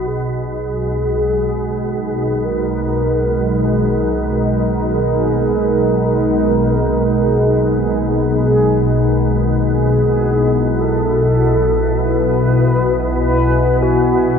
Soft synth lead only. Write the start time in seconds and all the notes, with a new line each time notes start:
0.06 G#4
2.44 A#4
3.65 G#4
4.85 G#4
6.05 A#4
7.23 G#4
8.42 G#4
9.62 G#4
10.81 A4
11.99 B4
13.23 B4
13.82 F#4